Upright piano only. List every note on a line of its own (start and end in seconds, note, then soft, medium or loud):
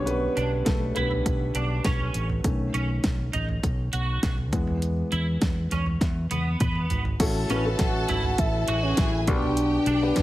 0.00 0.17 D3 medium
0.00 0.17 G3 medium
0.00 0.09 B3 medium
0.00 2.46 C#4 medium
0.00 2.46 C#5 medium
0.06 0.63 B3 medium
0.06 0.68 B4 medium
0.65 0.94 A3 medium
0.65 0.93 A4 medium
0.95 1.23 D3 soft
0.95 1.23 G3 soft
0.95 1.52 B3 medium
0.95 1.51 B4 medium
2.44 2.84 D#3 medium
2.44 2.84 A3 soft
2.44 2.85 C#4 medium
4.52 4.92 E3 medium
4.52 4.92 G#3 medium
4.52 4.93 B3 medium
7.20 8.05 A2 medium
7.20 7.48 C#4 medium
7.20 7.48 E4 medium
7.20 7.48 F#4 medium
7.20 7.49 A4 loud
7.50 7.63 C#4 medium
7.50 7.63 E4 medium
7.50 7.63 F#4 medium
7.50 7.64 B4 medium
7.64 8.77 C#4 medium
7.64 8.77 E4 medium
7.64 8.77 F#4 medium
7.64 8.77 A4 medium
9.28 10.13 B2 medium
9.28 9.98 B3 medium
9.28 9.98 D4 medium
9.28 9.98 G4 medium
9.28 9.98 B4 medium
10.02 10.22 B3 medium
10.02 10.22 D4 medium
10.02 10.22 G4 medium
10.02 10.22 B4 loud